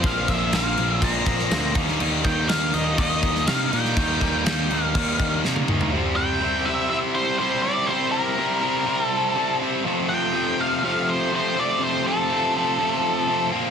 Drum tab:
CC |x-x-x-x-x-x-x-x-|x-x-x-x-x-x-x-x-|x-x-x-x-x-x-----|----------------|
SD |----o------oo--o|----o------oo--o|----o-------o---|----------------|
T1 |----------------|----------------|-------------o--|----------------|
T2 |----------------|----------------|--------------o-|----------------|
FT |----------------|----------------|---------------o|----------------|
BD |o-o-----o-o---o-|--o-----o-o-----|o-o-----o-o-----|----------------|

CC |----------------|----------------|----------------|
SD |----------------|----------------|----------------|
T1 |----------------|----------------|----------------|
T2 |----------------|----------------|----------------|
FT |----------------|----------------|----------------|
BD |----------------|----------------|----------------|